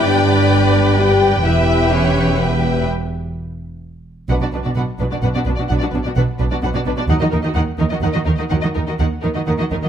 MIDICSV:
0, 0, Header, 1, 7, 480
1, 0, Start_track
1, 0, Tempo, 469116
1, 54, Time_signature, 3, 2, 24, 8
1, 8215, Tempo, 479233
1, 10078, End_track
2, 0, Start_track
2, 0, Title_t, "Violin section"
2, 0, Program_c, 0, 48
2, 59, Note_on_c, 0, 74, 61
2, 992, Note_off_c, 0, 74, 0
2, 1018, Note_on_c, 0, 79, 63
2, 1481, Note_off_c, 0, 79, 0
2, 1486, Note_on_c, 0, 76, 66
2, 1963, Note_off_c, 0, 76, 0
2, 1972, Note_on_c, 0, 73, 58
2, 2445, Note_on_c, 0, 71, 44
2, 2449, Note_off_c, 0, 73, 0
2, 2932, Note_off_c, 0, 71, 0
2, 4393, Note_on_c, 0, 78, 41
2, 4442, Note_off_c, 0, 78, 0
2, 4520, Note_on_c, 0, 74, 33
2, 4568, Note_off_c, 0, 74, 0
2, 4641, Note_on_c, 0, 71, 28
2, 4689, Note_off_c, 0, 71, 0
2, 4751, Note_on_c, 0, 74, 30
2, 4800, Note_off_c, 0, 74, 0
2, 4868, Note_on_c, 0, 78, 46
2, 4918, Note_off_c, 0, 78, 0
2, 5114, Note_on_c, 0, 71, 31
2, 5162, Note_off_c, 0, 71, 0
2, 5237, Note_on_c, 0, 74, 32
2, 5284, Note_off_c, 0, 74, 0
2, 5348, Note_on_c, 0, 78, 43
2, 5397, Note_off_c, 0, 78, 0
2, 5465, Note_on_c, 0, 74, 36
2, 5514, Note_off_c, 0, 74, 0
2, 5580, Note_on_c, 0, 71, 38
2, 5630, Note_off_c, 0, 71, 0
2, 5691, Note_on_c, 0, 74, 44
2, 5743, Note_off_c, 0, 74, 0
2, 5815, Note_on_c, 0, 78, 49
2, 5866, Note_off_c, 0, 78, 0
2, 5931, Note_on_c, 0, 74, 35
2, 5983, Note_off_c, 0, 74, 0
2, 6050, Note_on_c, 0, 71, 33
2, 6102, Note_off_c, 0, 71, 0
2, 6170, Note_on_c, 0, 74, 35
2, 6221, Note_off_c, 0, 74, 0
2, 6293, Note_on_c, 0, 78, 56
2, 6344, Note_off_c, 0, 78, 0
2, 6542, Note_on_c, 0, 71, 43
2, 6591, Note_off_c, 0, 71, 0
2, 6659, Note_on_c, 0, 74, 39
2, 6708, Note_off_c, 0, 74, 0
2, 6784, Note_on_c, 0, 78, 50
2, 6832, Note_off_c, 0, 78, 0
2, 6902, Note_on_c, 0, 74, 42
2, 6950, Note_off_c, 0, 74, 0
2, 7022, Note_on_c, 0, 71, 55
2, 7070, Note_off_c, 0, 71, 0
2, 7141, Note_on_c, 0, 74, 53
2, 7188, Note_off_c, 0, 74, 0
2, 7257, Note_on_c, 0, 78, 59
2, 7305, Note_off_c, 0, 78, 0
2, 7373, Note_on_c, 0, 75, 44
2, 7422, Note_off_c, 0, 75, 0
2, 7482, Note_on_c, 0, 70, 42
2, 7533, Note_off_c, 0, 70, 0
2, 7600, Note_on_c, 0, 75, 46
2, 7650, Note_off_c, 0, 75, 0
2, 7724, Note_on_c, 0, 78, 61
2, 7774, Note_off_c, 0, 78, 0
2, 7968, Note_on_c, 0, 70, 39
2, 8017, Note_off_c, 0, 70, 0
2, 8079, Note_on_c, 0, 75, 42
2, 8131, Note_off_c, 0, 75, 0
2, 8207, Note_on_c, 0, 78, 50
2, 8256, Note_off_c, 0, 78, 0
2, 8313, Note_on_c, 0, 75, 43
2, 8365, Note_off_c, 0, 75, 0
2, 8449, Note_on_c, 0, 70, 43
2, 8498, Note_off_c, 0, 70, 0
2, 8553, Note_on_c, 0, 75, 41
2, 8606, Note_off_c, 0, 75, 0
2, 8680, Note_on_c, 0, 78, 49
2, 8732, Note_off_c, 0, 78, 0
2, 8805, Note_on_c, 0, 75, 38
2, 8855, Note_off_c, 0, 75, 0
2, 8934, Note_on_c, 0, 70, 32
2, 8983, Note_off_c, 0, 70, 0
2, 9055, Note_on_c, 0, 75, 38
2, 9103, Note_off_c, 0, 75, 0
2, 9180, Note_on_c, 0, 78, 55
2, 9228, Note_off_c, 0, 78, 0
2, 9411, Note_on_c, 0, 70, 39
2, 9461, Note_off_c, 0, 70, 0
2, 9537, Note_on_c, 0, 75, 37
2, 9585, Note_off_c, 0, 75, 0
2, 9661, Note_on_c, 0, 78, 45
2, 9708, Note_off_c, 0, 78, 0
2, 9784, Note_on_c, 0, 75, 36
2, 9831, Note_off_c, 0, 75, 0
2, 9906, Note_on_c, 0, 70, 41
2, 9952, Note_off_c, 0, 70, 0
2, 10021, Note_on_c, 0, 75, 43
2, 10068, Note_off_c, 0, 75, 0
2, 10078, End_track
3, 0, Start_track
3, 0, Title_t, "Violin section"
3, 0, Program_c, 1, 48
3, 0, Note_on_c, 1, 74, 59
3, 0, Note_on_c, 1, 79, 62
3, 1451, Note_off_c, 1, 74, 0
3, 1472, Note_off_c, 1, 79, 0
3, 1485, Note_on_c, 1, 79, 49
3, 1487, Note_on_c, 1, 76, 51
3, 2903, Note_off_c, 1, 76, 0
3, 2903, Note_off_c, 1, 79, 0
3, 4405, Note_on_c, 1, 71, 43
3, 4451, Note_off_c, 1, 71, 0
3, 4517, Note_on_c, 1, 66, 31
3, 4565, Note_off_c, 1, 66, 0
3, 4623, Note_on_c, 1, 62, 31
3, 4674, Note_off_c, 1, 62, 0
3, 4742, Note_on_c, 1, 66, 33
3, 4793, Note_off_c, 1, 66, 0
3, 4859, Note_on_c, 1, 71, 47
3, 4911, Note_off_c, 1, 71, 0
3, 5103, Note_on_c, 1, 62, 32
3, 5153, Note_off_c, 1, 62, 0
3, 5220, Note_on_c, 1, 66, 40
3, 5271, Note_off_c, 1, 66, 0
3, 5348, Note_on_c, 1, 71, 50
3, 5397, Note_off_c, 1, 71, 0
3, 5481, Note_on_c, 1, 66, 43
3, 5527, Note_off_c, 1, 66, 0
3, 5590, Note_on_c, 1, 62, 36
3, 5638, Note_off_c, 1, 62, 0
3, 5711, Note_on_c, 1, 66, 38
3, 5759, Note_off_c, 1, 66, 0
3, 5846, Note_on_c, 1, 71, 49
3, 5891, Note_off_c, 1, 71, 0
3, 5962, Note_on_c, 1, 66, 35
3, 6007, Note_off_c, 1, 66, 0
3, 6083, Note_on_c, 1, 62, 32
3, 6129, Note_off_c, 1, 62, 0
3, 6199, Note_on_c, 1, 66, 40
3, 6245, Note_off_c, 1, 66, 0
3, 6308, Note_on_c, 1, 71, 59
3, 6356, Note_off_c, 1, 71, 0
3, 6555, Note_on_c, 1, 62, 50
3, 6601, Note_off_c, 1, 62, 0
3, 6668, Note_on_c, 1, 66, 51
3, 6716, Note_off_c, 1, 66, 0
3, 6786, Note_on_c, 1, 71, 59
3, 6834, Note_off_c, 1, 71, 0
3, 6906, Note_on_c, 1, 66, 48
3, 6953, Note_off_c, 1, 66, 0
3, 7030, Note_on_c, 1, 62, 43
3, 7076, Note_off_c, 1, 62, 0
3, 7153, Note_on_c, 1, 66, 46
3, 7198, Note_off_c, 1, 66, 0
3, 7271, Note_on_c, 1, 70, 58
3, 7316, Note_off_c, 1, 70, 0
3, 7383, Note_on_c, 1, 66, 42
3, 7430, Note_off_c, 1, 66, 0
3, 7514, Note_on_c, 1, 63, 40
3, 7558, Note_off_c, 1, 63, 0
3, 7638, Note_on_c, 1, 66, 40
3, 7681, Note_off_c, 1, 66, 0
3, 7732, Note_on_c, 1, 70, 62
3, 7781, Note_off_c, 1, 70, 0
3, 7978, Note_on_c, 1, 63, 47
3, 8025, Note_off_c, 1, 63, 0
3, 8104, Note_on_c, 1, 66, 47
3, 8151, Note_off_c, 1, 66, 0
3, 8220, Note_on_c, 1, 70, 55
3, 8266, Note_off_c, 1, 70, 0
3, 8331, Note_on_c, 1, 66, 45
3, 8380, Note_off_c, 1, 66, 0
3, 8438, Note_on_c, 1, 63, 46
3, 8489, Note_off_c, 1, 63, 0
3, 8576, Note_on_c, 1, 66, 46
3, 8624, Note_off_c, 1, 66, 0
3, 8686, Note_on_c, 1, 70, 49
3, 8736, Note_off_c, 1, 70, 0
3, 8818, Note_on_c, 1, 66, 38
3, 8866, Note_off_c, 1, 66, 0
3, 8954, Note_on_c, 1, 63, 36
3, 8999, Note_off_c, 1, 63, 0
3, 9068, Note_on_c, 1, 66, 37
3, 9114, Note_off_c, 1, 66, 0
3, 9188, Note_on_c, 1, 70, 55
3, 9235, Note_off_c, 1, 70, 0
3, 9427, Note_on_c, 1, 63, 39
3, 9473, Note_off_c, 1, 63, 0
3, 9546, Note_on_c, 1, 66, 38
3, 9592, Note_off_c, 1, 66, 0
3, 9662, Note_on_c, 1, 70, 52
3, 9709, Note_off_c, 1, 70, 0
3, 9781, Note_on_c, 1, 66, 37
3, 9828, Note_off_c, 1, 66, 0
3, 9904, Note_on_c, 1, 63, 40
3, 9950, Note_off_c, 1, 63, 0
3, 10031, Note_on_c, 1, 66, 42
3, 10075, Note_off_c, 1, 66, 0
3, 10078, End_track
4, 0, Start_track
4, 0, Title_t, "Viola section"
4, 0, Program_c, 2, 48
4, 0, Note_on_c, 2, 67, 66
4, 0, Note_on_c, 2, 71, 67
4, 1444, Note_off_c, 2, 71, 0
4, 1484, Note_off_c, 2, 67, 0
4, 1495, Note_on_c, 2, 71, 55
4, 1497, Note_on_c, 2, 67, 57
4, 2908, Note_off_c, 2, 71, 0
4, 2909, Note_off_c, 2, 67, 0
4, 4402, Note_on_c, 2, 62, 46
4, 4449, Note_off_c, 2, 62, 0
4, 4523, Note_on_c, 2, 62, 30
4, 4570, Note_off_c, 2, 62, 0
4, 4653, Note_on_c, 2, 62, 31
4, 4698, Note_off_c, 2, 62, 0
4, 4769, Note_on_c, 2, 62, 33
4, 4815, Note_off_c, 2, 62, 0
4, 4894, Note_on_c, 2, 62, 39
4, 4939, Note_off_c, 2, 62, 0
4, 5126, Note_on_c, 2, 62, 31
4, 5172, Note_off_c, 2, 62, 0
4, 5243, Note_on_c, 2, 62, 34
4, 5290, Note_off_c, 2, 62, 0
4, 5368, Note_on_c, 2, 62, 49
4, 5413, Note_off_c, 2, 62, 0
4, 5498, Note_on_c, 2, 62, 37
4, 5541, Note_off_c, 2, 62, 0
4, 5603, Note_on_c, 2, 62, 35
4, 5649, Note_off_c, 2, 62, 0
4, 5728, Note_on_c, 2, 62, 44
4, 5772, Note_off_c, 2, 62, 0
4, 5839, Note_on_c, 2, 62, 58
4, 5885, Note_off_c, 2, 62, 0
4, 5962, Note_on_c, 2, 62, 34
4, 6007, Note_off_c, 2, 62, 0
4, 6075, Note_on_c, 2, 62, 38
4, 6122, Note_off_c, 2, 62, 0
4, 6196, Note_on_c, 2, 62, 38
4, 6242, Note_off_c, 2, 62, 0
4, 6315, Note_on_c, 2, 62, 52
4, 6361, Note_off_c, 2, 62, 0
4, 6555, Note_on_c, 2, 62, 40
4, 6601, Note_off_c, 2, 62, 0
4, 6660, Note_on_c, 2, 62, 44
4, 6709, Note_off_c, 2, 62, 0
4, 6780, Note_on_c, 2, 62, 46
4, 6829, Note_off_c, 2, 62, 0
4, 6903, Note_on_c, 2, 62, 44
4, 6951, Note_off_c, 2, 62, 0
4, 7016, Note_on_c, 2, 62, 49
4, 7065, Note_off_c, 2, 62, 0
4, 7143, Note_on_c, 2, 62, 54
4, 7190, Note_off_c, 2, 62, 0
4, 7261, Note_on_c, 2, 63, 61
4, 7308, Note_off_c, 2, 63, 0
4, 7387, Note_on_c, 2, 63, 38
4, 7433, Note_off_c, 2, 63, 0
4, 7498, Note_on_c, 2, 63, 46
4, 7545, Note_off_c, 2, 63, 0
4, 7612, Note_on_c, 2, 63, 45
4, 7660, Note_off_c, 2, 63, 0
4, 7719, Note_on_c, 2, 63, 61
4, 7770, Note_off_c, 2, 63, 0
4, 7968, Note_on_c, 2, 63, 42
4, 8017, Note_off_c, 2, 63, 0
4, 8093, Note_on_c, 2, 63, 42
4, 8142, Note_off_c, 2, 63, 0
4, 8208, Note_on_c, 2, 63, 48
4, 8257, Note_off_c, 2, 63, 0
4, 8326, Note_on_c, 2, 63, 38
4, 8376, Note_off_c, 2, 63, 0
4, 8450, Note_on_c, 2, 63, 40
4, 8499, Note_off_c, 2, 63, 0
4, 8566, Note_on_c, 2, 63, 44
4, 8616, Note_off_c, 2, 63, 0
4, 8690, Note_on_c, 2, 63, 51
4, 8740, Note_off_c, 2, 63, 0
4, 8818, Note_on_c, 2, 63, 34
4, 8866, Note_off_c, 2, 63, 0
4, 8930, Note_on_c, 2, 63, 33
4, 8979, Note_off_c, 2, 63, 0
4, 9056, Note_on_c, 2, 63, 40
4, 9105, Note_off_c, 2, 63, 0
4, 9187, Note_on_c, 2, 63, 52
4, 9233, Note_off_c, 2, 63, 0
4, 9413, Note_on_c, 2, 63, 43
4, 9463, Note_off_c, 2, 63, 0
4, 9537, Note_on_c, 2, 63, 35
4, 9585, Note_off_c, 2, 63, 0
4, 9652, Note_on_c, 2, 63, 44
4, 9701, Note_off_c, 2, 63, 0
4, 9774, Note_on_c, 2, 63, 40
4, 9823, Note_off_c, 2, 63, 0
4, 9902, Note_on_c, 2, 63, 40
4, 9949, Note_off_c, 2, 63, 0
4, 10015, Note_on_c, 2, 63, 44
4, 10062, Note_off_c, 2, 63, 0
4, 10078, End_track
5, 0, Start_track
5, 0, Title_t, "French horn section"
5, 0, Program_c, 3, 60
5, 52, Note_on_c, 3, 62, 72
5, 1005, Note_on_c, 3, 67, 81
5, 1008, Note_off_c, 3, 62, 0
5, 1325, Note_off_c, 3, 67, 0
5, 1469, Note_on_c, 3, 64, 73
5, 1945, Note_off_c, 3, 64, 0
5, 1962, Note_on_c, 3, 61, 68
5, 2437, Note_on_c, 3, 59, 54
5, 2444, Note_off_c, 3, 61, 0
5, 2929, Note_off_c, 3, 59, 0
5, 4399, Note_on_c, 3, 62, 36
5, 4402, Note_on_c, 3, 54, 37
5, 4566, Note_off_c, 3, 62, 0
5, 4568, Note_off_c, 3, 54, 0
5, 5830, Note_on_c, 3, 62, 45
5, 5833, Note_on_c, 3, 54, 41
5, 5997, Note_off_c, 3, 62, 0
5, 5999, Note_off_c, 3, 54, 0
5, 7250, Note_on_c, 3, 63, 52
5, 7257, Note_on_c, 3, 54, 55
5, 7419, Note_off_c, 3, 63, 0
5, 7424, Note_off_c, 3, 54, 0
5, 8699, Note_on_c, 3, 54, 43
5, 8705, Note_on_c, 3, 63, 43
5, 8867, Note_off_c, 3, 54, 0
5, 8870, Note_off_c, 3, 63, 0
5, 10078, End_track
6, 0, Start_track
6, 0, Title_t, "Cello section"
6, 0, Program_c, 4, 48
6, 0, Note_on_c, 4, 43, 64
6, 1449, Note_off_c, 4, 43, 0
6, 1479, Note_on_c, 4, 40, 53
6, 2899, Note_off_c, 4, 40, 0
6, 4392, Note_on_c, 4, 47, 45
6, 4441, Note_off_c, 4, 47, 0
6, 4516, Note_on_c, 4, 47, 30
6, 4564, Note_off_c, 4, 47, 0
6, 4637, Note_on_c, 4, 47, 30
6, 4685, Note_off_c, 4, 47, 0
6, 4755, Note_on_c, 4, 47, 33
6, 4804, Note_off_c, 4, 47, 0
6, 4878, Note_on_c, 4, 47, 44
6, 4926, Note_off_c, 4, 47, 0
6, 5117, Note_on_c, 4, 47, 37
6, 5165, Note_off_c, 4, 47, 0
6, 5238, Note_on_c, 4, 47, 32
6, 5286, Note_off_c, 4, 47, 0
6, 5356, Note_on_c, 4, 47, 50
6, 5403, Note_off_c, 4, 47, 0
6, 5479, Note_on_c, 4, 47, 36
6, 5526, Note_off_c, 4, 47, 0
6, 5596, Note_on_c, 4, 47, 36
6, 5643, Note_off_c, 4, 47, 0
6, 5713, Note_on_c, 4, 47, 37
6, 5761, Note_off_c, 4, 47, 0
6, 5834, Note_on_c, 4, 47, 51
6, 5881, Note_off_c, 4, 47, 0
6, 5953, Note_on_c, 4, 47, 39
6, 6000, Note_off_c, 4, 47, 0
6, 6077, Note_on_c, 4, 47, 35
6, 6123, Note_off_c, 4, 47, 0
6, 6192, Note_on_c, 4, 47, 41
6, 6239, Note_off_c, 4, 47, 0
6, 6313, Note_on_c, 4, 47, 53
6, 6360, Note_off_c, 4, 47, 0
6, 6549, Note_on_c, 4, 47, 41
6, 6596, Note_off_c, 4, 47, 0
6, 6666, Note_on_c, 4, 47, 42
6, 6714, Note_off_c, 4, 47, 0
6, 6784, Note_on_c, 4, 47, 58
6, 6832, Note_off_c, 4, 47, 0
6, 6901, Note_on_c, 4, 47, 42
6, 6949, Note_off_c, 4, 47, 0
6, 7014, Note_on_c, 4, 47, 44
6, 7063, Note_off_c, 4, 47, 0
6, 7138, Note_on_c, 4, 47, 43
6, 7186, Note_off_c, 4, 47, 0
6, 7251, Note_on_c, 4, 51, 62
6, 7301, Note_off_c, 4, 51, 0
6, 7373, Note_on_c, 4, 51, 44
6, 7421, Note_off_c, 4, 51, 0
6, 7492, Note_on_c, 4, 51, 44
6, 7540, Note_off_c, 4, 51, 0
6, 7610, Note_on_c, 4, 51, 46
6, 7659, Note_off_c, 4, 51, 0
6, 7731, Note_on_c, 4, 51, 61
6, 7779, Note_off_c, 4, 51, 0
6, 7974, Note_on_c, 4, 51, 45
6, 8022, Note_off_c, 4, 51, 0
6, 8096, Note_on_c, 4, 51, 45
6, 8144, Note_off_c, 4, 51, 0
6, 8217, Note_on_c, 4, 51, 60
6, 8265, Note_off_c, 4, 51, 0
6, 8338, Note_on_c, 4, 51, 42
6, 8385, Note_off_c, 4, 51, 0
6, 8459, Note_on_c, 4, 51, 39
6, 8506, Note_off_c, 4, 51, 0
6, 8570, Note_on_c, 4, 51, 42
6, 8619, Note_off_c, 4, 51, 0
6, 8694, Note_on_c, 4, 51, 55
6, 8743, Note_off_c, 4, 51, 0
6, 8818, Note_on_c, 4, 51, 37
6, 8866, Note_off_c, 4, 51, 0
6, 8941, Note_on_c, 4, 51, 34
6, 8989, Note_off_c, 4, 51, 0
6, 9068, Note_on_c, 4, 51, 37
6, 9114, Note_off_c, 4, 51, 0
6, 9181, Note_on_c, 4, 51, 51
6, 9229, Note_off_c, 4, 51, 0
6, 9417, Note_on_c, 4, 51, 38
6, 9466, Note_off_c, 4, 51, 0
6, 9536, Note_on_c, 4, 51, 38
6, 9585, Note_off_c, 4, 51, 0
6, 9653, Note_on_c, 4, 51, 53
6, 9702, Note_off_c, 4, 51, 0
6, 9773, Note_on_c, 4, 51, 37
6, 9822, Note_off_c, 4, 51, 0
6, 9895, Note_on_c, 4, 51, 38
6, 9943, Note_off_c, 4, 51, 0
6, 10022, Note_on_c, 4, 51, 39
6, 10068, Note_off_c, 4, 51, 0
6, 10078, End_track
7, 0, Start_track
7, 0, Title_t, "Double bass section"
7, 0, Program_c, 5, 48
7, 0, Note_on_c, 5, 31, 65
7, 1453, Note_off_c, 5, 31, 0
7, 1487, Note_on_c, 5, 28, 55
7, 2904, Note_off_c, 5, 28, 0
7, 4393, Note_on_c, 5, 35, 45
7, 4442, Note_off_c, 5, 35, 0
7, 4634, Note_on_c, 5, 35, 31
7, 4683, Note_off_c, 5, 35, 0
7, 4869, Note_on_c, 5, 35, 46
7, 4918, Note_off_c, 5, 35, 0
7, 5112, Note_on_c, 5, 35, 35
7, 5160, Note_off_c, 5, 35, 0
7, 5351, Note_on_c, 5, 35, 50
7, 5400, Note_off_c, 5, 35, 0
7, 5586, Note_on_c, 5, 35, 38
7, 5635, Note_off_c, 5, 35, 0
7, 5832, Note_on_c, 5, 35, 52
7, 5880, Note_off_c, 5, 35, 0
7, 6071, Note_on_c, 5, 35, 39
7, 6119, Note_off_c, 5, 35, 0
7, 6307, Note_on_c, 5, 35, 60
7, 6355, Note_off_c, 5, 35, 0
7, 6546, Note_on_c, 5, 35, 42
7, 6594, Note_off_c, 5, 35, 0
7, 6778, Note_on_c, 5, 35, 59
7, 6827, Note_off_c, 5, 35, 0
7, 7018, Note_on_c, 5, 35, 47
7, 7067, Note_off_c, 5, 35, 0
7, 7246, Note_on_c, 5, 39, 63
7, 7297, Note_off_c, 5, 39, 0
7, 7492, Note_on_c, 5, 39, 42
7, 7541, Note_off_c, 5, 39, 0
7, 7733, Note_on_c, 5, 39, 62
7, 7781, Note_off_c, 5, 39, 0
7, 7970, Note_on_c, 5, 39, 43
7, 8019, Note_off_c, 5, 39, 0
7, 8212, Note_on_c, 5, 39, 63
7, 8260, Note_off_c, 5, 39, 0
7, 8455, Note_on_c, 5, 39, 42
7, 8503, Note_off_c, 5, 39, 0
7, 8699, Note_on_c, 5, 39, 49
7, 8747, Note_off_c, 5, 39, 0
7, 8940, Note_on_c, 5, 39, 34
7, 8987, Note_off_c, 5, 39, 0
7, 9184, Note_on_c, 5, 39, 56
7, 9231, Note_off_c, 5, 39, 0
7, 9434, Note_on_c, 5, 39, 36
7, 9479, Note_off_c, 5, 39, 0
7, 9671, Note_on_c, 5, 39, 51
7, 9716, Note_off_c, 5, 39, 0
7, 9908, Note_on_c, 5, 39, 42
7, 9954, Note_off_c, 5, 39, 0
7, 10078, End_track
0, 0, End_of_file